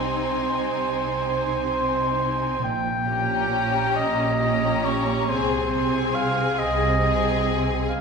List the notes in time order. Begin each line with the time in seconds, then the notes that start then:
Already playing: C2 C3 C4 D#4 C5 G#5
2.64 A#1 A#2 G5
3.08 C#4 G4 A#5
3.96 A#1 A#2 D#5
4.40 C#4 G4 A#5
4.84 C#5
5.28 C2 C3 C4 G#4 C5 G#5
5.71 C4 G#4 G#5
6.15 F5
6.59 C2 C3 D#5
7.02 C4 G#4 G#5
7.89 C#2 C#3 F5